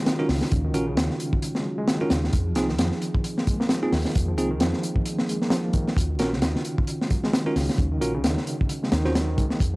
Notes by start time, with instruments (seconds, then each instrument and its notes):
Already playing: reed electric piano C#3 D#3 F#3 G#3, tonewheel organ D#3 C#4 F4 F#4
0.06 reed electric piano D#3, snare, closed hi-hat
0.19 tine electric piano C#4 F4 F#4 A#4, reed electric piano D#4
0.29 fingered electric bass C#2, reed electric piano C#3, snare, open hi-hat
0.41 snare
0.52 fingered electric bass D#2, kick, closed hi-hat
0.64 reed electric piano D#3
0.74 fingered electric bass A#1, tine electric piano C#4 F4 F#4 A#4, closed hi-hat
0.87 reed electric piano C#3
0.97 fingered electric bass D#2, reed electric piano D#3, snare, closed hi-hat
1.10 snare
1.20 closed hi-hat
1.33 kick
1.42 closed hi-hat
1.55 reed electric piano G#3, snare
1.65 reed electric piano F#3
1.78 reed electric piano G#3
1.88 reed electric piano D#3, snare, closed hi-hat
2.01 tine electric piano C#4 F4 F#4 A#4, reed electric piano D#4
2.10 fingered electric bass D#2, reed electric piano C#3, snare, closed hi-hat
2.24 snare
2.33 fingered electric bass F2, tonewheel organ F3 C4 D#4 G#4, kick, closed hi-hat
2.46 reed electric piano F3
2.55 fingered electric bass C2, tine electric piano C4 D#4 F4 G#4, snare, closed hi-hat
2.69 reed electric piano D#3, snare
2.79 fingered electric bass F2, reed electric piano F3, snare, closed hi-hat
2.92 snare
3.02 closed hi-hat
3.15 kick
3.24 closed hi-hat
3.37 reed electric piano A#3, snare
3.47 reed electric piano G#3, kick, closed hi-hat
3.60 reed electric piano A#3, snare
3.69 reed electric piano F3, snare, closed hi-hat
3.83 tine electric piano C4 D#4 F4 G#4, reed electric piano F4
3.92 fingered electric bass D#2, reed electric piano D#3, snare, open hi-hat
4.05 snare
4.15 fingered electric bass F2, kick, closed hi-hat
4.28 reed electric piano F3
4.38 fingered electric bass C2, tine electric piano C4 D#4 F4 G#4, closed hi-hat
4.51 reed electric piano D#3
4.60 fingered electric bass F2, reed electric piano F3, snare, closed hi-hat
4.73 snare
4.83 closed hi-hat
4.96 kick
5.05 closed hi-hat
5.18 reed electric piano A#3, snare
5.29 reed electric piano G#3, closed hi-hat
5.42 reed electric piano A#3, snare
5.50 reed electric piano F3, snare, closed hi-hat
5.64 reed electric piano F4
5.73 reed electric piano D#3, kick, closed hi-hat
5.88 snare
5.97 fingered electric bass D#2, tonewheel organ D#3 C#4 F4 F#4, kick, closed hi-hat
6.10 reed electric piano D#3
6.19 fingered electric bass A#1, tine electric piano C#4 F4 F#4 A#4, snare, closed hi-hat
6.33 reed electric piano C#3, snare
6.42 fingered electric bass D#2, reed electric piano D#3, snare, closed hi-hat
6.56 snare
6.65 closed hi-hat
6.78 kick
6.87 closed hi-hat
7.01 reed electric piano G#3, snare
7.10 reed electric piano F#3, kick, closed hi-hat
7.24 reed electric piano G#3, snare
7.33 reed electric piano D#3, snare, closed hi-hat
7.46 tine electric piano C#4 F4 F#4 A#4, reed electric piano D#4
7.56 fingered electric bass C#2, reed electric piano C#3, snare, open hi-hat
7.70 snare
7.78 fingered electric bass D#2, tonewheel organ D#4, kick, closed hi-hat
7.92 reed electric piano D#3
8.01 fingered electric bass A#1, tine electric piano C#4 F4 F#4 A#4, closed hi-hat
8.15 reed electric piano C#3
8.24 fingered electric bass D#2, reed electric piano D#3, snare, closed hi-hat
8.38 snare
8.47 closed hi-hat
8.61 kick
8.69 closed hi-hat
8.83 reed electric piano G#3, snare
8.92 fingered electric bass D#2, reed electric piano D#3, snare, closed hi-hat
9.05 reed electric piano D#3, tine electric piano C#4 F4 F#4 C5, snare
9.15 reed electric piano F#3, snare, closed hi-hat
9.28 reed electric piano D#3
9.38 fingered electric bass C#2, reed electric piano G#3, kick, closed hi-hat
9.50 reed electric piano A#3, snare
9.60 fingered electric bass F2, tonewheel organ F3 C4 G#4, kick, closed hi-hat